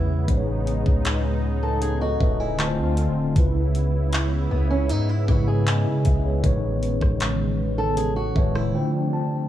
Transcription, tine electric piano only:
0.00 0.13 C#3 medium
0.00 0.13 G#3 medium
0.00 0.14 E4 medium
0.00 0.15 B4 medium
0.27 1.62 A2 medium
0.27 1.62 G#3 medium
0.27 1.63 D#4 medium
0.27 1.44 B4 medium
0.27 0.36 C5 medium
0.37 1.48 C#5 medium
2.02 2.20 A4 medium
2.02 2.20 D#5 medium
2.21 2.39 B4 medium
2.21 2.39 E5 medium
2.40 2.77 D#5 medium
2.40 2.77 G#5 medium
2.57 3.25 D3 medium
2.57 3.26 A3 medium
2.57 3.27 F4 medium
2.57 2.66 B4 medium
2.57 3.32 A5 medium
2.68 3.30 C5 loud
3.35 4.69 C#3 medium
3.35 4.70 G#3 medium
3.35 4.71 E4 medium
3.35 4.71 B4 loud
5.27 6.28 C#3 medium
5.27 6.29 G#3 medium
5.27 5.35 D#4 medium
5.27 5.68 B4 loud
5.36 6.33 E4 medium
5.67 6.04 D#5 medium
5.67 6.04 G#5 medium
6.06 6.24 B4 medium
6.06 6.24 E5 medium
6.25 6.62 G#4 medium
6.25 6.45 C#5 medium
6.43 7.77 A2 medium
6.43 7.78 G#3 medium
6.43 7.78 D#4 medium
6.43 7.78 B4 medium
6.43 7.79 C#5 loud
8.35 8.74 A2 medium
8.35 8.75 D#3 medium
8.35 8.74 G#3 medium
8.35 8.75 B4 medium
8.35 8.75 C#5 medium
8.35 8.72 E5 medium
8.73 9.41 D3 medium
8.73 9.41 A3 medium
8.73 9.42 F4 medium
8.73 9.42 C5 medium
8.73 9.10 G5 medium
9.13 9.48 A5 medium

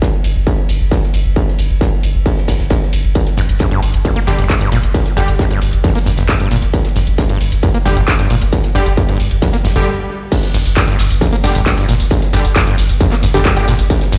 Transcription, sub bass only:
0.24 0.35 G1 loud
0.36 0.46 G1 medium
0.69 0.80 G1 loud
0.80 0.91 G1 medium
1.14 1.24 G1 loud
1.25 1.36 G1 medium
1.59 1.69 G1 loud
1.70 1.81 G1 medium
2.03 2.14 G1 loud
2.15 2.26 G1 medium
2.48 2.59 G1 loud
2.59 2.70 G1 medium
2.93 3.04 G1 loud
3.04 3.15 G1 medium
3.38 3.48 G1 loud
3.49 3.60 G1 medium
3.83 3.93 G1 loud
3.94 4.05 G1 medium
4.27 4.38 G1 loud
4.39 4.49 G1 medium
4.72 4.83 G1 loud
4.83 4.94 G1 medium
5.17 5.28 G1 loud
5.28 5.39 G1 medium
5.62 5.72 G1 loud
5.73 5.84 G1 medium
6.06 6.17 G1 loud
6.18 6.29 G1 medium
6.51 6.62 G1 loud
6.63 6.73 G1 medium
6.96 7.07 G1 loud
7.07 7.18 G1 medium
7.41 7.51 G1 loud
7.52 7.63 G1 medium
7.86 7.96 G1 loud
7.97 8.08 G1 medium
8.30 8.41 G1 loud
8.41 8.52 G1 medium
8.75 8.86 G1 loud
8.86 8.97 G1 medium
9.20 9.30 G1 loud
9.31 9.42 G1 medium
9.65 9.75 G1 loud
9.76 9.87 G1 medium
10.54 10.65 G1 loud
10.65 10.76 G1 medium
10.99 11.10 G1 loud
11.10 11.21 G1 medium
11.44 11.55 G1 loud
11.55 11.66 G1 medium
11.89 11.99 G1 loud
12.00 12.11 G1 medium
12.33 12.44 G1 loud
12.45 12.56 G1 medium
12.78 12.89 G1 loud
12.90 13.00 G1 medium
13.23 13.34 G1 loud
13.34 13.45 G1 medium
13.68 13.78 G1 loud
13.79 13.90 G1 medium
14.12 14.18 G1 loud

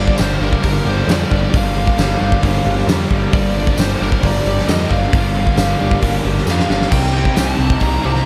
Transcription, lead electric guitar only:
0.00 0.18 D5 medium
0.19 0.42 C5 medium
0.42 0.63 A#4 medium
0.64 0.87 A#4 medium
0.90 1.09 C5 medium
1.11 1.57 D5 loud
1.57 2.86 F5 medium
3.34 3.80 D5 medium
3.81 4.01 C5 medium
4.03 4.25 A#4 medium
4.25 4.68 D5 medium
4.68 4.92 D#5 loud
4.90 6.21 F5 loud
6.51 6.69 F5 medium
6.71 6.91 F5 medium
6.92 7.38 G5 medium
7.38 7.83 A5 loud
7.83 8.06 A#5 loud
8.07 8.26 A#5 loud

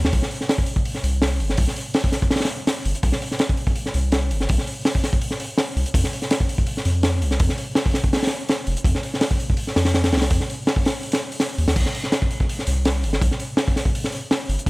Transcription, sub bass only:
0.04 0.12 D#2 medium
0.13 0.21 C2 loud
1.03 1.41 C2 medium
1.40 1.56 G1 loud
1.58 1.67 C2 loud
2.85 2.94 G1 medium
3.03 3.12 C2 loud
3.94 4.32 C2 medium
4.31 4.47 G1 medium
4.50 4.58 C2 loud
5.76 5.85 C2 medium
5.94 6.03 F2 loud
6.85 7.23 F2 loud
7.22 7.38 C2 loud
7.40 7.49 F2 loud
8.67 8.76 F1 loud
8.84 8.93 F2 loud
9.76 10.14 F2 medium
10.12 10.29 C2 loud
10.31 10.39 F2 loud
11.58 11.67 D#2 medium
11.76 11.85 C2 loud
12.67 13.05 C2 medium
13.03 13.20 G1 medium
13.21 13.30 C2 loud
14.49 14.57 G1 medium
14.66 14.70 C2 loud

